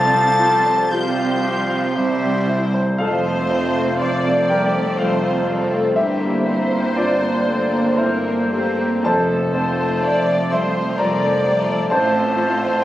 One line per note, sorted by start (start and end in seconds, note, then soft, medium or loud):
0.00 1.91 C2 medium
0.00 1.92 C2 medium
0.00 0.90 F3 medium
0.00 0.91 C4 medium
0.00 0.90 F4 medium
0.00 0.90 G4 medium
0.00 0.90 A4 medium
0.00 0.75 C5 medium
0.00 0.92 C5 medium
0.00 0.89 F5 medium
0.00 0.92 A5 medium
0.00 0.90 A6 medium
0.13 0.55 F3 soft
0.39 0.81 F4 soft
0.66 1.08 C5 soft
0.91 1.94 F3 medium
0.91 1.94 C4 medium
0.91 1.34 F4 soft
0.91 1.94 F4 medium
0.91 1.95 G4 medium
0.91 1.94 G4 soft
0.91 1.93 C5 medium
0.91 1.94 C5 medium
0.91 1.97 F5 medium
0.91 1.95 G5 medium
0.91 1.96 G6 medium
1.18 1.60 F5 soft
1.44 1.85 C6 medium
1.69 1.95 F5 soft
1.95 2.76 C2 medium
1.95 2.77 C2 medium
1.95 2.96 C2 medium
1.95 2.79 G3 soft
1.95 2.77 C4 soft
1.95 2.78 E4 medium
1.95 2.65 G4 soft
1.95 2.64 C5 medium
1.95 2.76 C5 medium
1.95 2.65 E5 soft
2.23 2.64 G3 soft
2.49 2.89 E4 soft
2.74 2.99 C5 soft
2.98 3.88 F1 medium
2.98 3.88 F2 medium
2.98 5.93 F2 medium
2.98 5.92 A3 medium
2.98 9.00 C4 medium
2.98 4.52 F4 medium
2.98 4.45 A4 soft
2.98 3.96 C5 medium
2.98 4.45 F5 medium
2.98 4.50 F5 medium
3.26 3.66 A3 soft
3.50 4.47 A3 soft
3.50 4.47 C4 soft
3.50 3.90 C4 soft
3.76 4.15 A3 soft
3.99 4.87 F1 medium
3.99 4.86 F2 medium
3.99 4.40 C5 soft
3.99 4.96 D5 medium
4.26 4.64 A3 soft
4.48 4.75 G3 soft
4.48 5.45 A3 soft
4.48 5.45 C4 soft
4.48 5.00 G4 medium
4.48 4.95 A#4 soft
4.48 4.99 G5 medium
4.48 4.94 G5 medium
4.74 5.13 A3 soft
4.98 5.85 F1 medium
4.98 5.84 F2 medium
4.98 5.23 G3 soft
4.98 5.96 F4 medium
4.98 5.93 A4 soft
4.98 5.47 C5 medium
4.98 5.96 F5 medium
4.98 5.92 F5 medium
5.24 5.62 A3 soft
5.47 5.72 G3 soft
5.47 5.96 A3 soft
5.47 5.95 C4 soft
5.47 5.96 C4 soft
5.47 5.97 A4 soft
5.72 5.96 A3 soft
5.96 6.84 G1 medium
5.96 6.84 G2 medium
5.96 9.00 G2 medium
5.96 9.00 A#3 soft
5.96 6.45 A#3 soft
5.96 6.45 C4 soft
5.96 6.97 E4 medium
5.96 6.45 G4 soft
5.96 6.92 G4 soft
5.96 6.92 E5 medium
5.96 6.99 E5 medium
6.22 6.61 A#3 soft
6.45 7.44 A#3 soft
6.45 7.44 C4 soft
6.45 6.86 C4 soft
6.45 7.44 C4 soft
6.45 7.97 C5 medium
6.72 7.11 A#3 soft
6.96 7.85 G1 soft
6.96 7.85 G2 soft
6.96 7.99 D4 medium
6.96 7.94 F4 soft
6.96 7.36 C5 soft
6.96 7.93 D5 medium
6.96 7.99 D5 medium
7.21 7.61 A#3 soft
7.47 7.72 A3 soft
7.47 8.49 A#3 soft
7.47 8.49 C4 soft
7.72 8.13 A#3 soft
7.97 8.92 G1 medium
7.97 8.92 G2 medium
7.97 8.24 A3 soft
7.97 9.06 C4 soft
7.97 9.00 E4 soft
7.97 8.51 A#4 soft
7.97 9.00 C5 medium
7.97 9.05 C5 medium
8.25 8.68 A#3 soft
8.51 8.78 A3 soft
8.51 9.03 A#3 soft
8.51 9.03 C4 soft
8.51 9.03 G4 soft
8.79 9.04 A#3 soft
9.03 9.91 F1 medium
9.03 9.91 F2 medium
9.03 11.87 F2 medium
9.03 11.90 A3 medium
9.03 11.87 C4 medium
9.03 9.54 A4 medium
9.03 10.34 A4 medium
9.03 10.01 C5 soft
9.03 10.23 A5 medium
9.03 10.47 A5 medium
9.29 9.68 A3 soft
9.54 10.49 A3 soft
9.54 10.49 C4 soft
9.54 9.93 C4 soft
9.54 10.49 F4 soft
9.54 10.03 C5 medium
9.79 10.17 A3 soft
10.02 10.88 F1 medium
10.02 10.88 F2 medium
10.02 10.41 C5 soft
10.02 10.50 D5 medium
10.28 10.66 A3 soft
10.50 10.76 G3 soft
10.50 11.44 A3 soft
10.50 11.44 C4 soft
10.50 11.44 F4 soft
10.50 11.00 C5 medium
10.50 10.99 C5 soft
10.50 10.96 E5 soft
10.50 11.00 C6 medium
10.50 10.95 C6 medium
10.76 11.13 A3 soft
10.98 11.80 F1 medium
10.98 11.80 F2 medium
10.98 11.23 G3 soft
10.98 11.65 A#4 medium
10.98 11.87 D5 soft
10.98 11.91 D5 medium
10.98 11.86 A#5 medium
10.98 11.65 A#5 medium
11.24 11.60 A3 soft
11.46 11.69 G3 soft
11.46 11.90 A3 soft
11.46 11.90 C4 soft
11.46 11.90 F4 soft
11.69 11.91 A3 soft
11.90 12.84 A1 medium
11.90 12.74 A1 medium
11.90 12.73 A2 medium
11.90 12.35 A3 soft
11.90 12.84 C4 medium
11.90 12.36 C4 soft
11.90 12.84 F4 medium
11.90 12.36 F4 soft
11.90 12.84 A4 medium
11.90 12.80 C5 medium
11.90 12.84 C5 medium
11.90 12.80 A5 medium
11.90 12.84 A5 medium
12.14 12.52 C4 soft
12.36 12.84 A3 soft
12.36 12.84 C4 soft
12.36 12.74 F4 soft
12.36 12.84 F4 soft
12.60 12.84 C4 soft